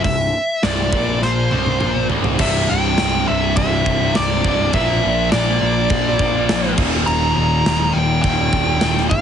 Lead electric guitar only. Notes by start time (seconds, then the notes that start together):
0.04 E5
0.63 D5
1.23 C5
2.41 E5
2.70 G5
3.28 E5
3.57 E5
4.16 D5
4.74 E5
5.32 D5
7.07 A#5
7.36 A#5
7.93 G5
8.22 G5
9.10 F5